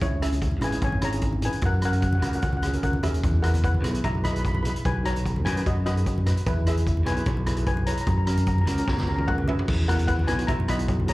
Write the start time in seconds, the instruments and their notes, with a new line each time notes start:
0.01 fingered electric bass C#2, steel pan E4 C#5, kick, closed hi-hat
0.21 steel pan C#4 E4 G#4 E5, cross-stick, closed hi-hat
0.32 closed hi-hat, high conga
0.42 kick, closed hi-hat
0.51 high conga
0.61 fingered electric bass G#1, steel pan C#4 E4 G#4 B4 G#5, cross-stick, closed hi-hat, low conga
0.71 steel pan C#4 E4 G#4, closed hi-hat
0.82 fingered electric bass G#1, steel pan C#5 G#5, kick, closed hi-hat
0.92 low conga
1.02 steel pan C#4 E4 G#4 C#5 A#5, cross-stick, closed hi-hat, high conga
1.12 steel pan C#4 E4 G#4, closed hi-hat
1.21 kick, closed hi-hat
1.33 high conga
1.41 steel pan C#4 E4 G#4 G#5, closed hi-hat, low conga
1.46 steel pan B4
1.52 closed hi-hat
1.61 fingered electric bass F#2, kick, closed hi-hat
1.66 steel pan A#4 F#5
1.82 steel pan C#4 F#4 A#4 F#5, cross-stick, closed hi-hat
1.93 steel pan F#5, closed hi-hat, high conga
2.01 steel pan F#5, kick, closed hi-hat
2.07 steel pan F#5
2.13 steel pan F#5, high conga
2.22 fingered electric bass C#2, steel pan C#4 F#4 A#4 F#5, cross-stick, closed hi-hat, low conga
2.27 steel pan F#5
2.33 steel pan C#4 F#4 A#4 F#5, closed hi-hat
2.42 fingered electric bass C#2, steel pan F#5, kick, closed hi-hat
2.50 steel pan F#5, low conga
2.57 steel pan F#5
2.62 steel pan C#4 F#4 G#4 F#5, cross-stick, closed hi-hat, high conga
2.73 steel pan C#4 F#4 A#4, closed hi-hat
2.83 fingered electric bass C#2, steel pan A#4 F#5, kick, closed hi-hat
2.93 high conga
3.03 fingered electric bass D#2, steel pan C#4 F#4 G#4 A#4 E5, cross-stick, closed hi-hat, low conga
3.14 closed hi-hat
3.23 fingered electric bass E2, kick, closed hi-hat
3.42 steel pan E4 G#4 A#4 B4 F#5, cross-stick, closed hi-hat
3.54 closed hi-hat, high conga
3.64 steel pan B4 F#5, kick, closed hi-hat
3.74 high conga
3.82 fingered electric bass B1, steel pan E4 G#4 B4, cross-stick, closed hi-hat, low conga
3.92 steel pan E4 G#4 B4, closed hi-hat
4.04 fingered electric bass B1, steel pan E5 A#5, kick, closed hi-hat
4.15 low conga
4.23 steel pan E4 G#4 B4 D#5 B5, cross-stick, closed hi-hat, high conga
4.32 steel pan E4 G#4 B4 B5, closed hi-hat
4.39 steel pan B5
4.45 steel pan B5, kick, closed hi-hat
4.54 steel pan B5, high conga
4.62 steel pan E4 G#4 B4 B5, closed hi-hat, low conga
4.70 steel pan B5
4.76 closed hi-hat
4.85 fingered electric bass B1, steel pan B4 G#5, kick, closed hi-hat
5.03 steel pan D#4 F#4 B4 C#5 A#5, cross-stick, closed hi-hat
5.16 closed hi-hat, high conga
5.26 kick, closed hi-hat
5.36 high conga
5.45 fingered electric bass F#2, steel pan D#4 F#4 B4 G#5, cross-stick, closed hi-hat, low conga
5.56 steel pan D#4 F#4 B4, closed hi-hat
5.66 fingered electric bass F#2, steel pan F#4 D#5, kick, closed hi-hat
5.86 steel pan D#4 F#4 B4 D#5, cross-stick, closed hi-hat, high conga
5.96 steel pan D#4 F#4 G#4, closed hi-hat
6.06 kick, closed hi-hat
6.18 high conga
6.25 steel pan D#4 F#4 B4, cross-stick, closed hi-hat, low conga
6.37 closed hi-hat
6.46 fingered electric bass E2, steel pan E4 B4, kick, closed hi-hat
6.66 steel pan E4 G#4 B4 E5, cross-stick, closed hi-hat
6.77 closed hi-hat, high conga
6.87 kick, closed hi-hat
6.97 high conga
7.05 fingered electric bass B1, steel pan E4 G#4 B4 G#5, cross-stick, closed hi-hat, low conga
7.17 steel pan E4 G#4 B4, closed hi-hat
7.26 fingered electric bass B1, kick, closed hi-hat
7.37 low conga
7.46 steel pan E4 G#4 B4, cross-stick, closed hi-hat, high conga
7.57 steel pan E4 G#4 B4, closed hi-hat
7.66 steel pan B4 G#5, kick, closed hi-hat
7.77 high conga
7.86 steel pan E4 G#4 B4 C#5 A#5, closed hi-hat
7.97 steel pan A#5, closed hi-hat
8.06 fingered electric bass F#2, steel pan A#5, kick, closed hi-hat
8.18 steel pan A#5
8.26 steel pan C#4 F#4 A#4 A#5, cross-stick, closed hi-hat
8.34 steel pan A#5, closed hi-hat
8.38 steel pan A#5, high conga
8.46 steel pan A#5, kick, closed hi-hat
8.54 steel pan A#5
8.58 steel pan A#5, high conga
8.67 fingered electric bass C#2, steel pan C#4 F#4 A#4 A#5, cross-stick, closed hi-hat
8.77 steel pan C#4 F#4 A#4 A#5, closed hi-hat
8.86 fingered electric bass C#2, steel pan A#5, kick, snare
8.93 steel pan A#5
8.98 steel pan A#5, snare, low conga
9.07 steel pan C#4 F#4 A#4 A#5, high conga
9.16 steel pan C#4 F#4 A#4 A#5, high tom
9.22 steel pan A#5
9.28 steel pan A#4 F#5 A#5, kick, mid tom
9.38 high conga
9.47 steel pan C#4 F#4 G#4 B4 E5, floor tom, low conga
9.59 floor tom
9.68 fingered electric bass E2, kick, crash
9.88 steel pan B3 E4 F#4 A#4 F#5, cross-stick, closed hi-hat
9.99 closed hi-hat, high conga
10.07 steel pan B4 F#5, kick, closed hi-hat
10.19 high conga
10.27 fingered electric bass B1, steel pan B3 E4 F#4 B4 G#5, cross-stick, closed hi-hat, low conga
10.38 steel pan B3 E4 F#4, closed hi-hat
10.47 fingered electric bass B1, steel pan E5 A#5, kick, closed hi-hat
10.60 low conga
10.68 steel pan B3 E4 F#4 D#5 B5, cross-stick, closed hi-hat, high conga
10.78 steel pan B3 E4 F#4, closed hi-hat
10.88 kick, closed hi-hat
11.00 high conga
11.07 steel pan B3 E4 G#4 C#5 A#5, closed hi-hat, low conga